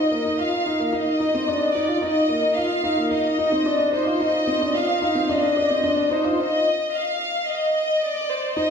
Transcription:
Already playing: violin section D#5
0.11 grand piano A#3
0.25 grand piano D#4
0.39 grand piano F4, violin section F5
0.66 grand piano D#4
0.80 grand piano A#3
0.87 violin section F5
0.93 grand piano D#4, violin section D#5
1.20 grand piano D#4
1.34 grand piano C4
1.48 grand piano D4
1.75 grand piano D#4, violin section D5
1.88 grand piano F4
2.02 grand piano D#4, violin section D#5
2.29 grand piano A#3
2.43 grand piano D#4
2.56 grand piano F4, violin section F5
2.84 grand piano D#4
2.98 grand piano A#3
3.11 grand piano D#4, violin section D#5
3.39 grand piano D#4
3.52 grand piano C4
3.66 grand piano D4
3.93 grand piano D#4, violin section C5
4.07 grand piano F4
4.20 grand piano D#4, violin section D#5
4.47 grand piano C4
4.61 grand piano D4
4.75 grand piano F4, violin section F5
5.02 grand piano D#4
5.15 grand piano C4
5.29 grand piano D4, violin section D#5
5.57 grand piano D4
5.70 grand piano C4
5.84 grand piano D4
6.11 grand piano D#4, violin section C5
6.24 grand piano F4
6.39 violin section D#5
6.93 violin section F5
7.48 violin section D#5
8.03 violin section D5
8.30 violin section C5
8.57 grand piano D#4, violin section D#5

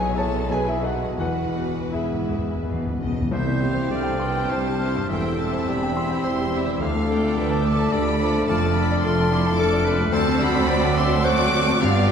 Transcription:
Already playing: grand piano B1 B4 G#5, double bass section B1, cello section B2, viola section G#4, violin section C#5 G#5
0.15 grand piano E4 G#4 A5, viola section A4, violin section A5
0.19 grand piano C#5
0.48 grand piano B1, viola section G#4, violin section B4 G#5
0.52 grand piano B4 G#5
0.65 viola section E4, violin section E5, grand piano E5
0.70 grand piano G#4
0.81 grand piano D#4 A4 F#5, viola section F#4, violin section F#5
0.86 grand piano A4
1.17 double bass section E1, cello section E2, timpani E2, grand piano E2 B4 F#5, viola section F#4, violin section B4 F#5
1.34 timpani E2
1.44 timpani E2
1.53 timpani E2, grand piano B3
1.61 timpani E2
1.68 timpani E2
1.76 timpani E2
1.85 timpani E2
1.90 cello section G#2, viola section E4, grand piano E4 E5, violin section E5
1.94 timpani E2, grand piano G#4
2.03 timpani E2
2.13 timpani E2
2.21 timpani E2
2.29 timpani E2, grand piano G#4
2.39 timpani E2
2.47 timpani E2
2.55 timpani E2
2.63 timpani E2, cello section B2, grand piano B3
2.71 timpani E2
2.79 timpani E2
2.87 timpani E2
2.96 timpani E2, grand piano B2, cello section C#3
3.01 timpani E2, violin section D#5
3.12 timpani E2
3.21 timpani E2
3.31 grand piano C2, double bass section C2, cello section C2, timpani C3, bassoon G3, french horn section G3 C4, clarinet E4, oboe C5, violin section E5, flute G6
3.46 grand piano C4
3.60 viola section C4 E4, grand piano G4, violin section G4 C5 F5
3.73 grand piano C5
3.88 double bass section C2, cello section C2, bassoon A3, clarinet D4, grand piano G4, oboe D5
3.95 flute F6
4.03 grand piano G5
4.20 bassoon B3, viola section C4 E4, violin section G4 C5 G5, grand piano C6
4.36 grand piano G5
4.50 double bass section C2, cello section C2, bassoon C4, oboe C5, grand piano C5, violin section A5
4.67 grand piano G4
4.80 grand piano C4, viola section C4 E4, violin section G4 C5
4.95 grand piano G2
5.09 double bass section E1, grand piano E2, cello section E2, bassoon A3, viola section C4 E4, clarinet C4, violin section G4 C5 G5, oboe E5
5.14 flute E6
5.23 grand piano C4
5.38 viola section C4 E4, grand piano G4, violin section G4 C5 A5
5.53 grand piano C5
5.67 double bass section E1, cello section E2, bassoon G3, clarinet D4, grand piano G4, violin section B5
5.83 grand piano G5
5.97 viola section C4 E4, clarinet E4, violin section G4 C5, grand piano C6
6.10 grand piano G5
6.24 double bass section E1, cello section E2, bassoon G3, clarinet E4, grand piano C5, oboe E5, violin section C6
6.38 grand piano G4
6.51 grand piano C4, viola section C4 E4, violin section G4 C5 E5
6.65 grand piano E3
6.80 grand piano D2, cello section D2, double bass section D2, bassoon A3, french horn section A3 D4, clarinet D4, oboe F5, violin section F5, flute D6
6.95 grand piano A3
7.08 viola section A3 F4, grand piano A4, violin section A4 D5 G5
7.24 grand piano D5
7.37 cello section D2, double bass section D2, bassoon B3, grand piano A4, oboe E5
7.49 grand piano A5
7.65 viola section A3 F4, bassoon A3, violin section A4 D5 A5, grand piano D6
7.79 grand piano A5
7.92 double bass section D2, cello section D2, bassoon G3, clarinet D4, grand piano A4, oboe D5, violin section B5
8.08 grand piano D5
8.20 bassoon F3, viola section A3 F4, violin section A4 D5, grand piano A4
8.38 grand piano A3
8.47 double bass section F1, cello section F2, grand piano F2, bassoon A3, viola section A3 F4, violin section A4 D5 A5, oboe D5, flute F6
8.64 grand piano A3
8.76 viola section A3 F4, violin section A4 D5 B5, grand piano A4
8.91 grand piano D5
9.01 double bass section F1, cello section F2, bassoon A3, grand piano A4, violin section C6
9.05 clarinet F4, flute F6
9.20 grand piano A5
9.29 viola section A3 F4, clarinet E4, violin section A4 D5, grand piano D6
9.46 grand piano A5
9.55 double bass section F1, cello section F2, oboe A4, grand piano A4, violin section D6
9.60 clarinet D4, flute F6
9.72 grand piano D5
9.84 viola section A3 F4, violin section A4 D5, grand piano A4, oboe B4
10.00 grand piano A3
10.11 grand piano D2, double bass section D2, cello section D2, french horn section F#3 C4, viola section C4 F#4, violin section A4 D5 A5, oboe C5, flute E6
10.16 clarinet C4
10.27 grand piano C4
10.42 grand piano F#4, violin section B5
10.55 grand piano D5
10.68 bassoon F#3, grand piano C5, oboe D5, flute D6
10.83 grand piano F#5
10.97 oboe E5, violin section C6, grand piano D6
11.12 grand piano F#5
11.23 clarinet A3, viola section C4 F#4, violin section A4 D5 D6, grand piano C5, oboe F#5
11.39 grand piano D5
11.53 grand piano F#4
11.68 grand piano C4
11.79 double bass section G1, grand piano G2, cello section G2, french horn section F3 B3, bassoon G3, viola section B3 F4, clarinet B3, violin section G4 D5 F5, oboe D5, flute D6
11.96 grand piano B3
12.08 violin section G5

